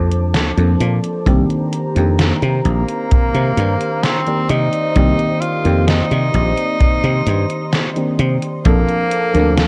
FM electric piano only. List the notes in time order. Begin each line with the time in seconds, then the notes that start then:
Already playing: F3 A#3 C4 D4 A4
0.57 F3 A#3 C4 D4 A4
1.26 D#3 A#3 C4 D4 G4
1.95 D#3 A#3 C4 D4 G4
4.26 D#3 A#3 C4 G4 D5
4.96 D#3 A#3 C4 G4 D5
5.64 D#3 A#3 C4 G4 D5
7.96 D#3 A#3 C4 D4 G4
8.65 F3 A#3 C4 D4 A4
9.33 F3 A#3 C4 D4 A4